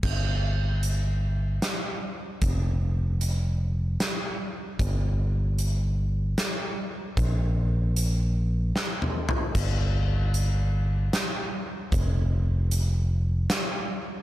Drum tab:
CC |x--------|---------|---------|---------|
HH |---x--x--|x--x--x--|x--x--x--|x--x-----|
SD |------o--|------o--|------o--|------o--|
T2 |---------|---------|---------|-------o-|
FT |---------|---------|---------|--------o|
BD |o--------|o--------|o--------|o--------|

CC |x--------|---------|
HH |x--x--x--|x--x--x--|
SD |------o--|------o--|
T2 |---------|---------|
FT |---------|---------|
BD |o--------|o--------|